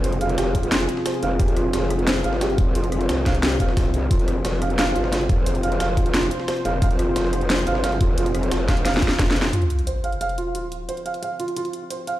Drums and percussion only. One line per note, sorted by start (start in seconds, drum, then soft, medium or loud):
0.04 closed hi-hat medium
0.12 closed hi-hat soft
0.21 closed hi-hat medium
0.29 closed hi-hat soft
0.38 snare loud
0.38 closed hi-hat medium
0.55 kick medium
0.55 closed hi-hat medium
0.63 closed hi-hat soft
0.72 snare loud
0.72 closed hi-hat medium
0.80 closed hi-hat soft
0.89 closed hi-hat medium
0.97 snare soft
1.06 snare loud
1.06 closed hi-hat medium
1.06 open hi-hat medium
1.14 closed hi-hat soft
1.23 closed hi-hat medium
1.40 kick loud
1.40 closed hi-hat medium
1.48 closed hi-hat soft
1.56 cross-stick soft
1.56 closed hi-hat medium
1.73 snare loud
1.73 closed hi-hat medium
1.82 snare soft
1.90 cross-stick soft
1.90 closed hi-hat medium
1.99 closed hi-hat soft
2.07 snare loud
2.07 closed hi-hat medium
2.16 snare medium
2.16 closed hi-hat soft
2.24 closed hi-hat medium
2.33 snare soft
2.41 snare loud
2.41 closed hi-hat medium
2.50 closed hi-hat soft
2.58 kick loud
2.58 closed hi-hat medium
2.75 closed hi-hat medium
2.84 closed hi-hat soft
2.92 cross-stick soft
2.92 closed hi-hat medium
3.01 closed hi-hat soft
3.09 snare loud
3.09 closed hi-hat medium
3.26 kick medium
3.26 cross-stick soft
3.26 snare soft
3.26 closed hi-hat medium
3.35 closed hi-hat soft
3.43 snare loud
3.43 closed hi-hat medium
3.52 closed hi-hat soft
3.60 kick medium
3.60 closed hi-hat medium
3.68 snare soft
3.77 kick loud
3.77 snare loud
3.77 closed hi-hat medium
3.77 open hi-hat medium
3.85 closed hi-hat soft
3.94 closed hi-hat medium
4.11 kick loud
4.11 closed hi-hat medium
4.19 closed hi-hat soft
4.28 cross-stick soft
4.28 closed hi-hat medium
4.45 snare loud
4.45 closed hi-hat medium
4.53 snare soft
4.62 cross-stick soft
4.62 closed hi-hat medium
4.70 closed hi-hat soft
4.79 snare loud
4.79 closed hi-hat medium
4.87 snare medium
4.87 closed hi-hat soft
4.96 closed hi-hat medium
5.04 snare soft
5.12 snare loud
5.12 snare soft
5.12 closed hi-hat medium
5.21 closed hi-hat soft
5.29 kick loud
5.29 closed hi-hat medium
5.46 closed hi-hat medium
5.55 closed hi-hat soft
5.63 closed hi-hat medium
5.72 closed hi-hat soft
5.80 snare loud
5.80 closed hi-hat medium
5.97 kick medium
5.97 closed hi-hat medium
6.06 closed hi-hat soft
6.14 snare loud
6.14 closed hi-hat medium
6.23 closed hi-hat soft
6.31 closed hi-hat medium
6.40 snare soft
6.48 snare loud
6.48 closed hi-hat medium
6.48 open hi-hat medium
6.57 closed hi-hat soft
6.65 closed hi-hat medium
6.82 kick loud
6.82 closed hi-hat medium
6.91 closed hi-hat soft
6.99 cross-stick soft
6.99 closed hi-hat medium
7.16 snare loud
7.16 closed hi-hat medium
7.24 snare soft
7.33 cross-stick soft
7.33 closed hi-hat medium
7.41 closed hi-hat soft
7.50 snare loud
7.50 closed hi-hat medium
7.58 snare medium
7.58 closed hi-hat soft
7.67 closed hi-hat medium
7.75 snare soft
7.84 snare loud
7.84 closed hi-hat medium
7.84 closed hi-hat loud
7.92 closed hi-hat soft
8.01 kick loud
8.01 closed hi-hat medium
8.18 closed hi-hat medium
8.18 closed hi-hat loud
8.26 closed hi-hat soft
8.35 cross-stick medium
8.35 closed hi-hat medium
8.43 closed hi-hat soft
8.51 snare loud
8.51 closed hi-hat loud
8.51 closed hi-hat medium
8.68 kick medium
8.68 cross-stick soft
8.68 snare soft
8.68 snare loud
8.68 closed hi-hat medium
8.77 closed hi-hat soft
8.85 snare medium
8.85 closed hi-hat medium
8.85 closed hi-hat loud
8.94 snare medium
8.94 closed hi-hat soft
9.02 kick medium
9.02 closed hi-hat medium
9.08 snare medium
9.11 snare soft
9.19 kick loud
9.19 snare medium
9.19 snare loud
9.19 closed hi-hat loud
9.19 open hi-hat medium
9.28 snare medium
9.28 closed hi-hat soft
9.36 closed hi-hat medium
9.42 snare loud
9.53 closed hi-hat medium
9.62 closed hi-hat soft
9.70 closed hi-hat medium
9.79 closed hi-hat soft
9.87 closed hi-hat medium
10.04 closed hi-hat medium
10.12 closed hi-hat soft
10.21 closed hi-hat medium
10.29 closed hi-hat soft
10.38 closed hi-hat medium
10.55 closed hi-hat loud
10.72 closed hi-hat medium
10.89 closed hi-hat medium
10.97 closed hi-hat soft
11.06 closed hi-hat medium
11.14 closed hi-hat soft
11.23 closed hi-hat medium
11.40 closed hi-hat medium
11.48 closed hi-hat soft
11.56 closed hi-hat medium
11.65 closed hi-hat soft
11.73 closed hi-hat medium
11.90 closed hi-hat medium
12.07 closed hi-hat medium